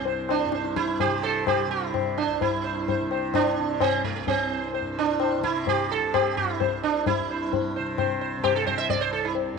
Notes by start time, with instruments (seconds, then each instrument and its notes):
Already playing: tanpura C2 G2 C3
0.05 sitar C5, tabla tin
0.29 sitar D4 C5, tabla na
0.45 tanpura G2
0.52 sitar C5, tabla te
0.65 tabla te
0.76 sitar E4 C5, tabla ke
0.88 tabla te
1.00 sitar G4 C5, tabla tin, tabla ge
1.05 tanpura C3
1.23 sitar A4 C5
1.47 sitar G4 C5, tabla na, tabla ge
1.67 tanpura C3
1.71 sitar E4, tabla te
1.94 tabla na, tabla ge
2.18 sitar D4 C5, tabla te
2.27 tanpura C2
2.41 tanpura G2, sitar E4, tabla tin, tabla ge
2.64 sitar C5
2.88 sitar C5, tabla tin, tabla ge
3.01 tanpura C3
3.11 sitar C5, tabla na
3.34 sitar D4, tabla na, tabla ge
3.59 tanpura C3
3.80 sitar C4, tabla na, tabla ge
4.03 sitar A3, tabla ge
4.20 tanpura C2
4.27 sitar C4, tabla tin, tabla ge
4.52 sitar C5
4.74 sitar C5, tabla tin
4.81 tanpura G2
4.99 sitar D4
5.20 sitar C5, tabla na
5.39 tanpura C3
5.43 sitar E4, tabla ke
5.67 sitar G4, tabla tin, tabla ge
5.91 sitar A4
6.00 tanpura C3
6.14 sitar G4, tabla na, tabla ge
6.37 sitar E4, tabla ge
6.59 tanpura C2, sitar C5, tabla tin, tabla ge
6.83 sitar D4
7.06 sitar E4, tabla tin, tabla ge
7.19 tanpura G2
7.30 sitar C5
7.53 tabla tin, tabla ge
7.76 tanpura C3, sitar C5
7.98 sitar C5, tabla na, tabla ge
8.21 sitar C5
8.37 tanpura C3
8.43 sitar G4, tabla na, tabla ge
8.56 sitar A4
8.67 sitar C5, tabla ge
8.78 sitar E5
8.90 sitar D5, tabla tin, tabla ge
8.94 tanpura C2
9.01 sitar C5
9.13 sitar A4
9.25 sitar E4
9.35 tabla tin
9.53 tanpura G2